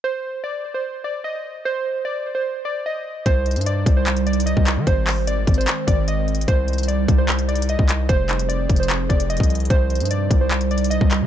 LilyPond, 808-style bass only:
\new Staff \with { instrumentName = "808-style bass" } { \clef bass \time 4/4 \key c \minor \tempo 4 = 149 r1 | r1 | c,8. g,8. c,4.~ c,16 c,8 ees16 | aes,,4. aes,,8 r8 aes,,4. |
c,4. c,4.~ c,16 c,8. | f,,4. f,,4 f,,8. c,8. | c,8. g,8. c,4.~ c,16 c,8 ees16 | }